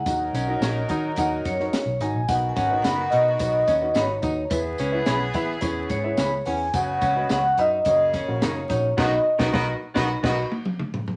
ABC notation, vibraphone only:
X:1
M:4/4
L:1/16
Q:1/4=108
K:B
V:1 name="Vibraphone"
f4 z6 c4 g2 | f3/2 g/2 f2 f2 d4 d2 c4 | B4 z6 c4 g2 | f4 f2 d4 c2 c2 c2 |
z16 |]